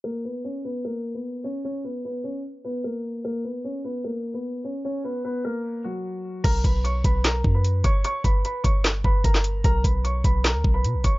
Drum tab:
CC |----------------|----------------|----------------|----------------|
HH |----------------|----------------|----------------|----------------|
CP |----------------|----------------|----------------|----------------|
SD |----------------|----------------|----------------|----------------|
BD |----------------|----------------|----------------|----------------|

CC |x---------------|----------------|----------------|
HH |x-x-x-x-x---x-x-|x-x-x-x-x---x-x-|x-x-x-x-x---x-x-|
CP |--------x-------|--------x----x--|--------x-------|
SD |--------o-------|--------o----o--|--------o-------|
BD |o-o---o---o---o-|--o---o---o-o---|o-o---o---o---o-|